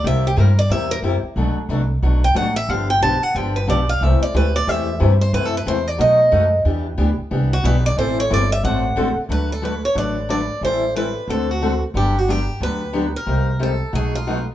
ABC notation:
X:1
M:4/4
L:1/16
Q:"Swing" 1/4=181
K:Clyd
V:1 name="Steel-string acoustic guitar"
e2 G2 _B2 d2 e2 B2 z4 | z8 z2 g2 f2 e2 | =f2 g2 a2 ^f2 g2 B2 d2 =f2 | e2 d2 B2 d2 e6 c2 |
(3B2 A2 B2 c2 d2 ^d8 | z8 z2 F2 B2 d2 | c2 ^c2 d2 e2 f6- f z | [K:D] B2 A2 B2 c2 d4 d4 |
=c4 B4 A2 F4 z2 | G2 F2 G4 B6 _B2- | _B4 A4 ^G2 =F4 z2 |]
V:2 name="Steel-string acoustic guitar"
[C,G,_B,EG]2 z2 [C,G,B,EG]2 z2 [C,G,B,EG]2 z2 [C,G,B,EG]2 z2 | [B,,F,A,DF]2 z2 [B,,F,A,DF]2 z2 [B,,F,A,DF]2 z2 [B,,F,A,DF]2 z2 | [D,=F,B,DG]2 z2 [D,F,B,DG]2 z2 [D,F,B,DG]2 z2 [D,F,B,DG]2 z2 | [C,E,A,EG]2 z2 [C,E,A,EG]2 z2 [C,E,A,EG]2 z2 [C,E,A,EG]2 z2 |
[C,E,A,EF]2 z2 [C,E,A,EF]2 z2 [B,,F,A,^DF]2 z2 [B,,F,A,DF]2 z2 | [E,B,DG]2 z2 [E,B,DG]2 z2 [E,B,DG]2 z2 [E,B,DG]2 z2 | [E,G,CEA]2 z2 [E,G,CEA]2 z2 [D,A,CFA]2 z2 [D,A,CFA]2 z2 | [K:D] [D,F,A,DFB]2 z2 [D,F,A,DFB]2 z2 [D,F,A,DFB]2 z2 [D,F,A,DFB]2 z2 |
[E,G,=CEA]2 z2 [E,G,CEA]2 z2 [D,A,CFA]2 z2 [D,A,CFA]2 z2 | [D,F,B,DG]2 z2 [D,F,B,DG]2 z2 [D,F,B,DG]2 z2 [D,F,B,DG]2 z2 | [=C,G,_B,_EG]2 z2 [C,G,B,EG]2 z2 [=B,,F,A,^DF]2 z2 [B,,F,A,DF]2 z2 |]
V:3 name="Upright bass" clef=bass
C,,4 G,,4 E,,4 F,,2 z2 | B,,,2 z2 C,,4 B,,,4 A,,,4 | G,,,4 B,,,2 z2 G,,,4 B,,,4 | C,,2 z2 D,,4 E,,4 G,,4 |
F,,4 E,,4 B,,4 F,,4 | E,,4 D,,2 z2 C,,4 B,,,4 | A,,,4 G,,,4 A,,,4 A,,,2 z2 | [K:D] D,,8 A,,,8 |
A,,,8 D,,8 | G,,,8 D,,8 | =C,,8 B,,,8 |]